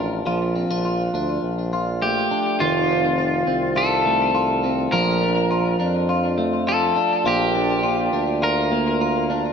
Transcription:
0, 0, Header, 1, 4, 480
1, 0, Start_track
1, 0, Key_signature, -2, "major"
1, 0, Tempo, 582524
1, 218, Time_signature, 4, 2, 24, 8
1, 7852, End_track
2, 0, Start_track
2, 0, Title_t, "Clean electric guitar"
2, 0, Program_c, 0, 27
2, 0, Note_on_c, 0, 70, 78
2, 1629, Note_off_c, 0, 70, 0
2, 1666, Note_on_c, 0, 67, 68
2, 2144, Note_on_c, 0, 65, 85
2, 2156, Note_off_c, 0, 67, 0
2, 3110, Note_on_c, 0, 69, 93
2, 3130, Note_off_c, 0, 65, 0
2, 3791, Note_off_c, 0, 69, 0
2, 4055, Note_on_c, 0, 70, 104
2, 4984, Note_off_c, 0, 70, 0
2, 5508, Note_on_c, 0, 69, 86
2, 5990, Note_off_c, 0, 69, 0
2, 5994, Note_on_c, 0, 67, 89
2, 6946, Note_off_c, 0, 67, 0
2, 6949, Note_on_c, 0, 70, 94
2, 7631, Note_off_c, 0, 70, 0
2, 7852, End_track
3, 0, Start_track
3, 0, Title_t, "Clean electric guitar"
3, 0, Program_c, 1, 27
3, 0, Note_on_c, 1, 53, 80
3, 0, Note_on_c, 1, 58, 56
3, 0, Note_on_c, 1, 62, 50
3, 0, Note_on_c, 1, 65, 61
3, 212, Note_off_c, 1, 53, 0
3, 215, Note_on_c, 1, 53, 78
3, 216, Note_off_c, 1, 65, 0
3, 220, Note_on_c, 1, 65, 69
3, 454, Note_off_c, 1, 62, 0
3, 457, Note_on_c, 1, 60, 52
3, 482, Note_off_c, 1, 58, 0
3, 580, Note_off_c, 1, 60, 0
3, 580, Note_on_c, 1, 62, 45
3, 697, Note_off_c, 1, 65, 0
3, 700, Note_on_c, 1, 65, 53
3, 929, Note_off_c, 1, 62, 0
3, 939, Note_on_c, 1, 62, 54
3, 1422, Note_off_c, 1, 65, 0
3, 1425, Note_on_c, 1, 65, 57
3, 1663, Note_on_c, 1, 57, 52
3, 1894, Note_off_c, 1, 62, 0
3, 1904, Note_on_c, 1, 62, 53
3, 2142, Note_off_c, 1, 53, 0
3, 2145, Note_on_c, 1, 51, 85
3, 2146, Note_off_c, 1, 65, 0
3, 2150, Note_on_c, 1, 65, 74
3, 2189, Note_off_c, 1, 62, 0
3, 2383, Note_on_c, 1, 60, 59
3, 2619, Note_off_c, 1, 65, 0
3, 2623, Note_on_c, 1, 65, 62
3, 2852, Note_off_c, 1, 60, 0
3, 2862, Note_on_c, 1, 60, 59
3, 3095, Note_off_c, 1, 65, 0
3, 3098, Note_on_c, 1, 65, 72
3, 3339, Note_off_c, 1, 57, 0
3, 3342, Note_on_c, 1, 57, 64
3, 3578, Note_off_c, 1, 65, 0
3, 3582, Note_on_c, 1, 65, 64
3, 3811, Note_off_c, 1, 60, 0
3, 3821, Note_on_c, 1, 60, 64
3, 4054, Note_off_c, 1, 51, 0
3, 4058, Note_on_c, 1, 53, 97
3, 4062, Note_off_c, 1, 65, 0
3, 4065, Note_on_c, 1, 65, 69
3, 4107, Note_off_c, 1, 60, 0
3, 4295, Note_on_c, 1, 62, 60
3, 4534, Note_off_c, 1, 65, 0
3, 4537, Note_on_c, 1, 65, 63
3, 4772, Note_off_c, 1, 62, 0
3, 4775, Note_on_c, 1, 62, 64
3, 5016, Note_off_c, 1, 65, 0
3, 5019, Note_on_c, 1, 65, 72
3, 5252, Note_off_c, 1, 57, 0
3, 5255, Note_on_c, 1, 57, 60
3, 5494, Note_off_c, 1, 65, 0
3, 5498, Note_on_c, 1, 65, 70
3, 5733, Note_off_c, 1, 62, 0
3, 5736, Note_on_c, 1, 62, 62
3, 5974, Note_off_c, 1, 57, 0
3, 5977, Note_on_c, 1, 58, 90
3, 5979, Note_off_c, 1, 65, 0
3, 5982, Note_on_c, 1, 65, 77
3, 6217, Note_off_c, 1, 62, 0
3, 6220, Note_on_c, 1, 62, 68
3, 6445, Note_off_c, 1, 65, 0
3, 6455, Note_on_c, 1, 65, 66
3, 6689, Note_off_c, 1, 62, 0
3, 6699, Note_on_c, 1, 62, 62
3, 6930, Note_off_c, 1, 65, 0
3, 6940, Note_on_c, 1, 65, 77
3, 6943, Note_off_c, 1, 53, 0
3, 7180, Note_off_c, 1, 58, 0
3, 7183, Note_on_c, 1, 58, 67
3, 7416, Note_off_c, 1, 65, 0
3, 7426, Note_on_c, 1, 65, 69
3, 7652, Note_off_c, 1, 62, 0
3, 7662, Note_on_c, 1, 62, 64
3, 7852, Note_off_c, 1, 58, 0
3, 7852, Note_off_c, 1, 62, 0
3, 7852, Note_off_c, 1, 65, 0
3, 7852, End_track
4, 0, Start_track
4, 0, Title_t, "Tuba"
4, 0, Program_c, 2, 58
4, 0, Note_on_c, 2, 33, 86
4, 203, Note_off_c, 2, 33, 0
4, 210, Note_on_c, 2, 34, 89
4, 556, Note_off_c, 2, 34, 0
4, 572, Note_on_c, 2, 34, 76
4, 917, Note_off_c, 2, 34, 0
4, 936, Note_on_c, 2, 38, 78
4, 1165, Note_off_c, 2, 38, 0
4, 1174, Note_on_c, 2, 34, 84
4, 1880, Note_off_c, 2, 34, 0
4, 2138, Note_on_c, 2, 29, 97
4, 2825, Note_off_c, 2, 29, 0
4, 2856, Note_on_c, 2, 36, 80
4, 4024, Note_off_c, 2, 36, 0
4, 4052, Note_on_c, 2, 34, 105
4, 4742, Note_off_c, 2, 34, 0
4, 4771, Note_on_c, 2, 41, 96
4, 5719, Note_off_c, 2, 41, 0
4, 5971, Note_on_c, 2, 34, 109
4, 6661, Note_off_c, 2, 34, 0
4, 6691, Note_on_c, 2, 38, 88
4, 7852, Note_off_c, 2, 38, 0
4, 7852, End_track
0, 0, End_of_file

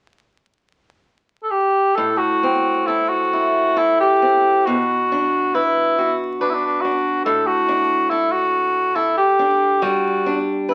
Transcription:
0, 0, Header, 1, 3, 480
1, 0, Start_track
1, 0, Tempo, 890208
1, 1058, Time_signature, 3, 2, 24, 8
1, 2990, Tempo, 859599
1, 5891, End_track
2, 0, Start_track
2, 0, Title_t, "Cor anglais"
2, 0, Program_c, 0, 69
2, 773, Note_on_c, 0, 69, 40
2, 814, Note_on_c, 0, 67, 58
2, 822, Note_off_c, 0, 69, 0
2, 1052, Note_on_c, 0, 69, 67
2, 1060, Note_off_c, 0, 67, 0
2, 1175, Note_on_c, 0, 66, 68
2, 1183, Note_off_c, 0, 69, 0
2, 1548, Note_on_c, 0, 64, 60
2, 1557, Note_off_c, 0, 66, 0
2, 1666, Note_on_c, 0, 66, 65
2, 1674, Note_off_c, 0, 64, 0
2, 2041, Note_on_c, 0, 64, 66
2, 2049, Note_off_c, 0, 66, 0
2, 2154, Note_off_c, 0, 64, 0
2, 2158, Note_on_c, 0, 67, 67
2, 2510, Note_on_c, 0, 66, 69
2, 2518, Note_off_c, 0, 67, 0
2, 2992, Note_on_c, 0, 64, 72
2, 3000, Note_off_c, 0, 66, 0
2, 3325, Note_off_c, 0, 64, 0
2, 3471, Note_on_c, 0, 62, 62
2, 3524, Note_on_c, 0, 64, 45
2, 3532, Note_off_c, 0, 62, 0
2, 3546, Note_on_c, 0, 62, 62
2, 3554, Note_off_c, 0, 64, 0
2, 3610, Note_off_c, 0, 62, 0
2, 3610, Note_on_c, 0, 62, 61
2, 3699, Note_on_c, 0, 66, 67
2, 3708, Note_off_c, 0, 62, 0
2, 3938, Note_off_c, 0, 66, 0
2, 3942, Note_on_c, 0, 69, 71
2, 4064, Note_on_c, 0, 66, 77
2, 4072, Note_off_c, 0, 69, 0
2, 4416, Note_on_c, 0, 64, 65
2, 4424, Note_off_c, 0, 66, 0
2, 4539, Note_on_c, 0, 66, 66
2, 4548, Note_off_c, 0, 64, 0
2, 4896, Note_on_c, 0, 64, 65
2, 4904, Note_off_c, 0, 66, 0
2, 5013, Note_off_c, 0, 64, 0
2, 5016, Note_on_c, 0, 67, 61
2, 5379, Note_on_c, 0, 66, 62
2, 5387, Note_off_c, 0, 67, 0
2, 5721, Note_off_c, 0, 66, 0
2, 5872, Note_on_c, 0, 64, 63
2, 5891, Note_off_c, 0, 64, 0
2, 5891, End_track
3, 0, Start_track
3, 0, Title_t, "Steel-string acoustic guitar"
3, 0, Program_c, 1, 25
3, 1065, Note_on_c, 1, 45, 49
3, 1311, Note_on_c, 1, 60, 37
3, 1551, Note_on_c, 1, 69, 44
3, 1796, Note_on_c, 1, 64, 35
3, 2024, Note_off_c, 1, 69, 0
3, 2030, Note_on_c, 1, 69, 47
3, 2269, Note_off_c, 1, 60, 0
3, 2276, Note_on_c, 1, 60, 33
3, 2516, Note_off_c, 1, 45, 0
3, 2518, Note_on_c, 1, 47, 53
3, 2562, Note_off_c, 1, 69, 0
3, 2565, Note_off_c, 1, 60, 0
3, 2565, Note_off_c, 1, 64, 0
3, 2760, Note_on_c, 1, 62, 37
3, 2990, Note_on_c, 1, 71, 44
3, 3234, Note_on_c, 1, 66, 37
3, 3466, Note_off_c, 1, 71, 0
3, 3472, Note_on_c, 1, 71, 47
3, 3715, Note_off_c, 1, 62, 0
3, 3717, Note_on_c, 1, 62, 37
3, 3941, Note_off_c, 1, 47, 0
3, 3947, Note_on_c, 1, 45, 59
3, 3991, Note_off_c, 1, 71, 0
3, 4183, Note_off_c, 1, 62, 0
3, 4185, Note_on_c, 1, 62, 42
3, 4422, Note_on_c, 1, 69, 45
3, 4888, Note_off_c, 1, 69, 0
3, 4894, Note_on_c, 1, 69, 45
3, 5136, Note_off_c, 1, 62, 0
3, 5138, Note_on_c, 1, 62, 39
3, 5189, Note_off_c, 1, 66, 0
3, 5377, Note_on_c, 1, 55, 60
3, 5387, Note_off_c, 1, 45, 0
3, 5430, Note_off_c, 1, 69, 0
3, 5622, Note_off_c, 1, 62, 0
3, 5624, Note_on_c, 1, 62, 40
3, 5862, Note_on_c, 1, 71, 42
3, 5891, Note_off_c, 1, 55, 0
3, 5891, Note_off_c, 1, 62, 0
3, 5891, Note_off_c, 1, 71, 0
3, 5891, End_track
0, 0, End_of_file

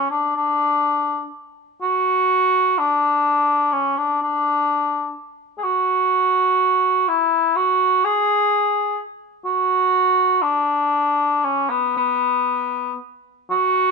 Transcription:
0, 0, Header, 1, 2, 480
1, 0, Start_track
1, 0, Tempo, 960000
1, 901, Time_signature, 4, 2, 24, 8
1, 5218, Tempo, 1013514
1, 6865, End_track
2, 0, Start_track
2, 0, Title_t, "Cor anglais"
2, 0, Program_c, 0, 69
2, 52, Note_on_c, 0, 62, 61
2, 166, Note_off_c, 0, 62, 0
2, 179, Note_on_c, 0, 62, 73
2, 639, Note_off_c, 0, 62, 0
2, 910, Note_on_c, 0, 66, 96
2, 1391, Note_on_c, 0, 62, 78
2, 1398, Note_off_c, 0, 66, 0
2, 1862, Note_on_c, 0, 61, 70
2, 1869, Note_off_c, 0, 62, 0
2, 1987, Note_on_c, 0, 62, 62
2, 1994, Note_off_c, 0, 61, 0
2, 2106, Note_off_c, 0, 62, 0
2, 2111, Note_on_c, 0, 62, 75
2, 2568, Note_off_c, 0, 62, 0
2, 2789, Note_on_c, 0, 68, 53
2, 2817, Note_on_c, 0, 66, 88
2, 2824, Note_off_c, 0, 68, 0
2, 3540, Note_on_c, 0, 64, 74
2, 3547, Note_off_c, 0, 66, 0
2, 3779, Note_on_c, 0, 66, 86
2, 3786, Note_off_c, 0, 64, 0
2, 4023, Note_on_c, 0, 68, 102
2, 4030, Note_off_c, 0, 66, 0
2, 4499, Note_off_c, 0, 68, 0
2, 4726, Note_on_c, 0, 66, 87
2, 5210, Note_on_c, 0, 62, 72
2, 5218, Note_off_c, 0, 66, 0
2, 5693, Note_on_c, 0, 61, 62
2, 5700, Note_off_c, 0, 62, 0
2, 5814, Note_on_c, 0, 59, 58
2, 5821, Note_off_c, 0, 61, 0
2, 5937, Note_off_c, 0, 59, 0
2, 5942, Note_on_c, 0, 59, 64
2, 6414, Note_off_c, 0, 59, 0
2, 6673, Note_on_c, 0, 66, 106
2, 6865, Note_off_c, 0, 66, 0
2, 6865, End_track
0, 0, End_of_file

